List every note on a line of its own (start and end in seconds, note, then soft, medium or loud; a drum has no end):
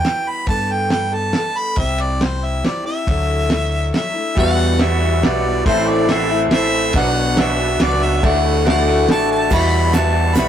0.00 0.45 E3 soft
0.00 0.31 G5 medium
0.04 0.46 G3 soft
0.04 0.45 B3 soft
0.04 0.47 G4 medium
0.04 snare medium
0.04 ride medium
0.29 0.48 B5 medium
0.46 1.30 G2 medium
0.46 0.91 G3 medium
0.46 0.90 B3 medium
0.46 0.90 D4 medium
0.46 0.91 A4 medium
0.46 0.74 A5 medium
0.46 kick loud
0.46 ride medium
0.72 0.91 G5 medium
0.90 1.13 G3 medium
0.90 1.13 B3 medium
0.90 1.12 D4 medium
0.90 1.16 G5 medium
0.90 snare medium
0.90 ride medium
0.94 1.10 A4 medium
1.11 1.34 D4 soft
1.11 1.33 A4 soft
1.11 1.59 A5 medium
1.15 1.34 B3 soft
1.33 1.76 G3 medium
1.33 1.78 B3 medium
1.33 1.78 D4 medium
1.33 1.79 A4 medium
1.33 snare medium
1.33 ride soft
1.57 1.81 B5 medium
1.76 2.60 C2 loud
1.76 2.21 C3 medium
1.76 2.19 G3 medium
1.76 2.21 C4 medium
1.76 2.22 E4 medium
1.76 2.22 G4 medium
1.76 2.02 E5 medium
1.76 kick medium
1.76 ride soft
1.98 2.24 D5 medium
1.98 ride soft
2.20 2.60 G3 medium
2.20 2.62 C4 medium
2.20 2.64 E4 medium
2.20 2.64 G4 medium
2.20 2.47 C5 medium
2.20 snare medium
2.20 ride medium
2.45 2.65 E5 medium
2.61 2.85 G3 medium
2.61 2.85 C4 medium
2.61 2.86 E4 medium
2.61 snare medium
2.61 ride medium
2.66 2.83 G4 medium
2.66 2.85 D5 medium
2.85 3.08 C4 soft
2.85 3.08 E4 soft
2.85 3.07 G4 soft
2.85 3.90 E5 medium
3.07 3.89 D2 medium
3.07 3.51 D3 medium
3.07 3.49 F#3 medium
3.07 3.50 A3 medium
3.07 3.51 D4 medium
3.07 3.52 E4 medium
3.07 kick loud
3.07 ride medium
3.50 3.92 F#3 medium
3.50 3.94 A3 medium
3.50 3.94 D4 medium
3.50 3.95 E4 medium
3.50 snare medium
3.50 ride medium
3.93 4.15 F#3 medium
3.93 4.16 A3 medium
3.93 4.15 D4 medium
3.93 4.34 E5 medium
3.93 snare medium
3.93 ride medium
3.97 4.12 E4 medium
4.14 4.38 A3 soft
4.14 4.37 D4 soft
4.14 4.36 E4 soft
4.36 4.80 E2 medium
4.36 5.19 E2 loud
4.36 4.80 B2 medium
4.36 4.80 E3 medium
4.36 5.64 G3 medium
4.36 4.80 G3 medium
4.36 5.65 B3 medium
4.36 4.81 B3 loud
4.36 5.64 E4 medium
4.36 5.64 F#4 medium
4.36 4.72 F#4 medium
4.36 4.81 F#4 medium
4.36 4.72 B4 medium
4.36 4.72 E5 medium
4.36 4.83 F#5 loud
4.36 kick loud
4.36 ride medium
4.77 5.22 E2 medium
4.77 5.22 B2 medium
4.77 5.01 E3 medium
4.77 5.13 F#4 medium
4.77 5.14 B4 medium
4.77 5.14 E5 medium
4.77 snare medium
4.77 ride medium
4.81 5.02 G3 medium
4.81 5.02 B3 medium
4.81 5.01 F#4 medium
4.81 5.26 E5 medium
5.02 5.22 E3 soft
5.02 5.24 G3 soft
5.02 5.24 B3 medium
5.02 5.23 F#4 medium
5.21 5.61 B1 medium
5.21 5.44 E3 medium
5.21 5.65 F#4 medium
5.21 5.66 B4 medium
5.21 5.65 D5 medium
5.21 5.66 E5 medium
5.21 snare medium
5.21 ride medium
5.25 5.45 G3 medium
5.25 5.46 B3 medium
5.25 5.45 F#4 medium
5.46 5.66 E3 soft
5.46 5.67 G3 soft
5.46 5.67 B3 soft
5.46 5.66 F#4 soft
5.65 6.47 A1 loud
5.65 6.09 A2 medium
5.65 6.08 E3 medium
5.65 6.93 A3 medium
5.65 6.09 A3 medium
5.65 6.93 C4 medium
5.65 6.09 C4 medium
5.65 6.93 E4 medium
5.65 6.01 E4 medium
5.65 6.10 E4 loud
5.65 6.92 A4 medium
5.65 6.01 A4 medium
5.65 5.91 C5 loud
5.65 6.01 C5 medium
5.65 6.01 E5 medium
5.65 kick loud
5.65 ride medium
5.90 6.13 D5 medium
6.07 6.51 A2 medium
6.07 6.30 E3 medium
6.07 6.30 A3 medium
6.07 6.31 C4 medium
6.07 6.43 E4 medium
6.07 6.43 A4 medium
6.07 6.44 C5 medium
6.07 6.44 F#5 medium
6.07 snare medium
6.07 ride medium
6.12 6.31 E4 medium
6.12 6.41 E5 medium
6.32 6.53 A3 soft
6.32 6.53 C4 soft
6.32 6.52 E4 medium
6.51 6.90 A1 medium
6.51 6.95 E3 medium
6.51 6.95 A3 medium
6.51 6.96 C4 medium
6.51 6.94 E4 medium
6.51 6.94 A4 medium
6.51 6.95 C5 medium
6.51 7.00 E5 loud
6.51 6.95 E5 medium
6.51 snare medium
6.51 ride medium
6.56 6.96 E4 medium
6.93 7.75 B1 loud
6.93 7.38 B2 medium
6.93 7.38 F#3 medium
6.93 8.22 B3 medium
6.93 7.38 B3 medium
6.93 8.22 D4 medium
6.93 7.29 F#4 medium
6.93 8.22 F#4 medium
6.93 7.30 B4 medium
6.93 8.22 B4 medium
6.93 7.30 D5 medium
6.93 7.30 F#5 medium
6.93 kick loud
6.93 ride medium
6.97 7.40 D4 loud
6.97 7.41 F#4 medium
6.97 7.42 F#5 loud
7.37 7.79 B2 medium
7.37 7.80 F#3 medium
7.37 7.80 B3 medium
7.37 7.81 D4 medium
7.37 7.72 F#4 medium
7.37 7.72 B4 medium
7.37 7.73 D5 medium
7.37 7.84 E5 medium
7.37 7.73 F#5 medium
7.37 snare medium
7.37 ride medium
7.42 7.84 F#4 medium
7.57 7.79 B3 medium
7.57 7.80 D4 medium
7.57 7.82 F#4 medium
7.80 8.19 C#2 medium
7.80 8.01 F#3 medium
7.80 8.02 B3 medium
7.80 8.01 D4 medium
7.80 8.20 F#4 medium
7.80 8.24 B4 medium
7.80 8.05 D5 loud
7.80 8.22 D5 medium
7.80 8.24 F#5 medium
7.80 snare medium
7.80 ride medium
7.84 7.99 F#4 medium
8.00 8.24 B3 soft
8.00 8.23 D4 soft
8.00 8.22 F#4 soft
8.00 8.17 E5 medium
8.17 8.27 E5 medium
8.22 9.04 D2 loud
8.22 8.64 D3 medium
8.22 9.50 A3 medium
8.22 8.65 A3 medium
8.22 9.49 D4 medium
8.22 9.48 E4 medium
8.22 8.67 E4 loud
8.22 8.57 F#4 medium
8.22 8.67 F#4 medium
8.22 9.48 F#4 medium
8.22 8.57 A4 medium
8.22 8.57 D5 medium
8.22 8.58 E5 medium
8.22 kick loud
8.22 ride medium
8.26 8.67 F#5 loud
8.65 9.08 D3 medium
8.65 9.08 A3 medium
8.65 9.11 E4 medium
8.65 9.00 F#4 medium
8.65 9.09 F#4 medium
8.65 9.00 A4 medium
8.65 9.01 D5 medium
8.65 9.01 F#5 medium
8.65 snare medium
8.65 ride medium
8.69 9.07 F#5 medium
8.87 9.07 A3 medium
8.87 9.09 E4 medium
8.87 9.09 F#4 medium
9.08 9.47 A1 medium
9.08 9.51 D3 medium
9.08 9.50 A3 medium
9.08 9.53 E4 medium
9.08 9.48 F#4 medium
9.08 9.52 F#4 medium
9.08 9.51 A4 medium
9.08 9.51 D5 medium
9.08 9.52 F#5 medium
9.08 9.29 A5 loud
9.08 snare medium
9.08 ride medium
9.32 9.56 A5 loud
9.48 9.93 E2 medium
9.48 10.32 E2 loud
9.48 9.94 B2 medium
9.48 9.92 E3 medium
9.48 10.48 G3 medium
9.48 10.48 B3 medium
9.48 10.48 E4 medium
9.48 10.48 F#4 medium
9.48 9.84 F#4 medium
9.48 9.85 B4 medium
9.48 9.85 E5 medium
9.48 kick loud
9.48 crash loud
9.48 shaker medium
9.53 9.93 G3 medium
9.53 9.93 B3 medium
9.53 9.95 F#4 medium
9.53 9.96 B5 loud
9.60 shaker soft
9.91 10.35 E2 medium
9.91 10.35 B2 loud
9.91 10.33 E3 medium
9.91 10.35 G3 medium
9.91 10.36 B3 medium
9.91 10.28 F#4 medium
9.91 10.29 B4 medium
9.91 10.37 A5 loud
9.91 snare medium
9.91 ride medium
9.91 shaker loud
9.96 10.36 F#4 medium
9.96 10.29 E5 medium
10.14 10.33 E3 medium
10.14 10.35 G3 medium
10.14 10.36 B3 medium
10.14 10.37 F#4 medium
10.34 10.48 B1 medium
10.34 10.48 E3 medium
10.34 10.48 G3 medium
10.34 10.48 B3 medium
10.34 10.48 F#4 medium
10.34 10.48 B4 medium
10.34 10.48 E5 medium
10.34 10.48 B5 loud
10.34 snare medium
10.34 ride medium
10.34 shaker loud